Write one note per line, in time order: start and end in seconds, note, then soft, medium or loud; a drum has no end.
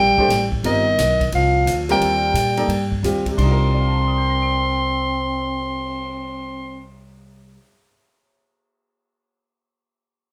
0.00 0.16 A#1 medium
0.00 0.49 G3 medium
0.00 0.50 G5 loud
0.18 0.29 A3 medium
0.18 0.29 D4 medium
0.18 0.30 G4 medium
0.18 0.30 C5 medium
0.18 muted upright bass stroke soft
0.18 kick medium
0.29 0.62 A1 loud
0.29 snare soft
0.29 hi-hat pedal medium
0.29 ride medium
0.52 kick medium
0.63 0.97 G1 medium
0.63 1.29 D#3 medium
0.63 0.84 G3 medium
0.63 0.84 C4 medium
0.63 0.84 F4 medium
0.63 0.85 A#4 medium
0.63 1.29 D#5 loud
0.63 ride medium
0.98 1.31 B1 medium
0.98 snare soft
0.98 hi-hat pedal medium
0.98 ride medium
1.20 kick medium
1.20 ride soft
1.32 1.65 C2 medium
1.32 1.85 F3 medium
1.32 1.86 F5 medium
1.32 ride medium
1.66 1.99 D2 medium
1.66 hi-hat pedal medium
1.66 ride medium
1.89 2.32 G3 medium
1.89 3.00 G3 medium
1.89 2.32 C4 medium
1.89 2.33 F4 medium
1.89 2.33 A#4 medium
1.89 3.00 G5 medium
1.89 snare soft
1.89 ride medium
2.00 2.33 D#2 medium
2.00 ride medium
2.34 2.67 A#2 medium
2.34 hi-hat pedal medium
2.34 ride medium
2.57 2.68 A#3 medium
2.57 2.68 D#4 medium
2.57 2.68 A4 medium
2.57 2.68 D5 medium
2.57 ride soft
2.68 3.01 G2 medium
2.68 ride medium
2.92 kick soft
3.03 3.36 D#2 medium
3.03 3.23 G3 medium
3.03 3.23 C4 medium
3.03 3.24 F4 medium
3.03 3.24 G4 medium
3.03 hi-hat pedal medium
3.03 ride medium
3.26 7.52 C3 medium
3.26 kick soft
3.26 ride soft
3.32 7.57 G3 medium
3.37 7.56 C2 medium
3.37 6.86 C4 medium
3.37 7.60 D4 medium
3.37 6.86 C6 medium
3.37 kick medium
3.37 crash medium
3.42 7.62 D#4 medium
3.47 7.64 F4 medium
3.51 7.67 A#4 medium
3.60 cymbal swell soft
3.73 7.57 D5 soft
3.80 7.60 F5 soft
3.88 7.64 A5 soft
3.98 7.69 C6 soft
4.08 7.74 D#6 soft
4.18 7.79 G6 soft
4.30 7.85 A#6 soft
4.42 7.91 D7 soft